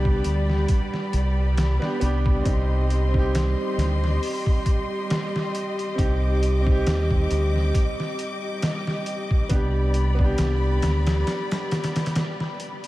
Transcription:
Already playing: C2 G3 B3 D4 G4 D5 B5
0.05 kick
0.24 D2, closed hi-hat
0.49 snare
0.68 kick, closed hi-hat
0.94 snare
1.13 C2, closed hi-hat
1.57 snare, closed hi-hat
1.79 B3 D4, snare
1.85 G4
2.00 C2 B3 D4, closed hi-hat
2.04 G4
2.26 kick
2.43 C2 C4 D#4 G4 D#5 C6, kick, closed hi-hat
2.48 G4
2.90 closed hi-hat
3.09 C4
3.14 D#4, kick
3.19 G4
3.35 snare, closed hi-hat
3.78 D2, snare, closed hi-hat
4.04 snare
4.23 open hi-hat
4.46 kick
4.66 kick, closed hi-hat
5.10 snare, closed hi-hat
5.36 snare
5.55 closed hi-hat
5.79 closed hi-hat
5.95 C2 C4 D#4 D6, kick, closed hi-hat
6.00 G4
6.43 closed hi-hat
6.61 C4
6.66 D#4, kick
6.71 G4
6.87 D#2, snare, closed hi-hat
7.11 kick
7.31 D2, closed hi-hat
7.56 snare
7.75 kick, closed hi-hat
8.00 snare
8.19 closed hi-hat
8.62 snare, closed hi-hat
8.87 snare
9.06 closed hi-hat
9.31 kick
9.49 C2 B3 D4 D5 B5, kick, closed hi-hat
9.54 G4
9.94 closed hi-hat
10.15 B3
10.19 D4, kick
10.24 G4
10.38 C2, snare, closed hi-hat
10.82 D2, snare, closed hi-hat
11.07 snare, closed hi-hat
11.27 snare, closed hi-hat
11.51 snare, closed hi-hat
11.71 snare, closed hi-hat
11.84 snare, closed hi-hat
11.96 snare, closed hi-hat
12.06 snare, closed hi-hat
12.15 snare, closed hi-hat
12.40 snare
12.60 closed hi-hat
12.84 closed hi-hat

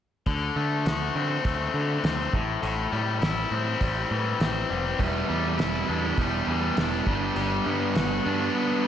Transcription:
0.26 D2 D3, kick, open hi-hat
0.56 D3 A3
0.86 D2 F#4, snare, open hi-hat
1.15 D3 C4
1.45 D2 A3, kick, open hi-hat
1.74 D3
2.04 D2 C4, snare, open hi-hat
2.33 A1 A2, kick
2.62 A1 A2, open hi-hat
2.92 A2 G3
3.21 A1 E4, snare, open hi-hat
3.51 A2 C4
3.81 A1 G3, kick, open hi-hat
4.11 A2 E3
4.40 A1 C4, snare, open hi-hat
4.70 F1 G3
4.99 E1 E2 G3 B3 E4, kick, open hi-hat
5.29 E2 G3
5.58 E1 E4, snare, open hi-hat
5.88 E2 D4
6.17 E1 G3 B3 E4, kick, open hi-hat
6.47 E2 E3
6.77 E1 D4, snare, open hi-hat
7.06 G1 G3 B3 D4, kick
7.36 G1 G3, open hi-hat
7.66 G2 B3
7.95 G1 F#4, snare, open hi-hat
8.25 G2 G3 B3 D4
8.55 B3

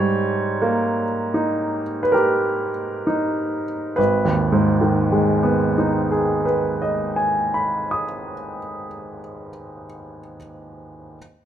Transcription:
Already playing: G#2 G3 C#5
0.62 A#3
1.34 D#4
2.03 B4
2.12 G4 A#4
3.07 D#4
3.96 G#1 B4
4.25 D#2
4.52 G#2
4.81 D#3
5.12 G#3
5.43 B3
5.78 D#4
6.11 G#4
6.45 B4
6.82 D#5
7.16 G#5
7.54 B5
7.91 D#6

